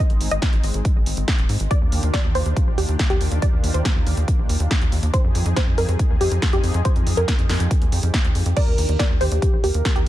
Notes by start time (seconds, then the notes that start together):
Already playing: G#3 C4 D#4
0.00 D#5
0.10 G#1, closed hi-hat
0.21 G#1, open hi-hat
0.31 G#1 D#5, closed hi-hat
0.42 kick, snare, closed hi-hat
0.53 G#1, closed hi-hat
0.64 G#1, open hi-hat
0.74 G#1, closed hi-hat
0.85 kick, closed hi-hat
0.96 G#1
1.06 G#1, open hi-hat
1.17 G#1, closed hi-hat
1.28 kick, snare, closed hi-hat
1.38 D#1, closed hi-hat
1.49 G#2, open hi-hat
1.60 G#1, closed hi-hat
1.71 D#3 A#3 D4 F4 G4 D5, kick, closed hi-hat
1.81 D#2
1.92 D#2, open hi-hat
2.03 D#2, closed hi-hat
2.13 D5, kick, snare, closed hi-hat
2.24 D#2
2.35 D#2 C5, open hi-hat
2.46 D#2, closed hi-hat
2.57 kick, closed hi-hat
2.67 A#1
2.78 D#2 G4, open hi-hat
2.89 D#2, closed hi-hat
2.99 kick, snare, closed hi-hat
3.10 D#2 G4, closed hi-hat
3.21 D#2, open hi-hat
3.32 D#2, closed hi-hat
3.42 D5, kick, closed hi-hat
3.53 D#2
3.64 D#2, open hi-hat
3.74 D#2 C5, closed hi-hat
3.85 kick, snare, closed hi-hat
3.96 D#2
4.06 D#2, open hi-hat
4.17 D#2, closed hi-hat
4.28 kick, closed hi-hat
4.39 A#1
4.49 D#2, open hi-hat
4.60 D#2, closed hi-hat
4.71 kick, snare, closed hi-hat
4.81 D#2, closed hi-hat
4.92 D#2, open hi-hat
5.03 D#2, closed hi-hat
5.13 F3 C4 D#4 G4 G#4 C5, kick, closed hi-hat
5.24 F2
5.35 F2, open hi-hat
5.46 F2, closed hi-hat
5.56 C5, kick, snare, closed hi-hat
5.67 F2
5.78 F2 A#4, open hi-hat
5.88 F2, closed hi-hat
5.99 kick, closed hi-hat
6.10 D#2
6.21 F2 G4, open hi-hat
6.31 F2, closed hi-hat
6.42 kick, snare, closed hi-hat
6.53 F2 G4, closed hi-hat
6.64 F2, open hi-hat
6.74 F2, closed hi-hat
6.85 C5, kick, closed hi-hat
6.96 F2, closed hi-hat
7.07 F2, open hi-hat
7.17 F2 A#4, closed hi-hat
7.28 kick, snare, closed hi-hat
7.39 F2, closed hi-hat
7.49 F2, snare, open hi-hat
7.60 F2, closed hi-hat
7.71 kick, closed hi-hat
7.82 D#2, closed hi-hat
7.92 F2, open hi-hat
8.03 F2, closed hi-hat
8.14 kick, snare, closed hi-hat
8.24 D#2, closed hi-hat
8.35 F2, open hi-hat
8.46 F2, closed hi-hat
8.56 D#3 A#3 D4 F4 A#4 D5, kick, closed hi-hat, crash
8.67 D#2
8.78 D#2, open hi-hat
8.89 D#2, closed hi-hat
8.99 D5, kick, snare, closed hi-hat
9.10 D#2
9.21 D#2 G4 C5, open hi-hat
9.32 D#2, closed hi-hat
9.42 kick, closed hi-hat
9.53 A#1
9.64 D#2 G4 A#4, open hi-hat
9.74 D#2, closed hi-hat
9.85 kick, snare, closed hi-hat
9.96 D#2 G4, closed hi-hat